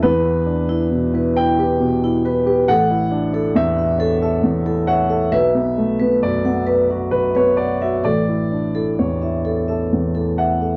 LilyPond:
<<
  \new Staff \with { instrumentName = "Vibraphone" } { \time 3/4 \key a \mixolydian \tempo 4 = 67 e'16 r8 e'16 r16 b'16 e'16 b'16 r16 e'16 b'16 b'16 | a'16 r8 a'16 r16 e''16 a'16 e''16 r16 a'16 e''16 e''16 | b'16 r8 b'16 r16 fis''16 b'16 fis''16 r16 b'16 fis''16 fis''16 | a'16 r8 a'16 r16 e''16 a'16 e''16 r16 a'16 e''16 e''16 | }
  \new Staff \with { instrumentName = "Grand piano" } { \time 3/4 \key a \mixolydian << { b'4. g''4. | fis''4 e''4. fis''8 | e''4 d''4 b'16 cis''16 d''16 e''16 | d''4 cis''4 r8 fis''8 | } \\ { e,16 e'16 d'16 e'16 b,16 e'16 b'16 g'16 b,16 e'16 b'16 g'16 | a,,16 e'16 d'16 e'16 e,16 e'16 cis''16 a'16 e,16 e'16 cis''16 a'16 | b,,16 b16 a16 b16 fis,16 b16 d''16 fis'16 fis,16 b8 fis'16 | a,,16 e'16 d'16 e'16 e,16 e'16 e''16 a'16 e,16 e'16 e''16 a'16 | } >> }
>>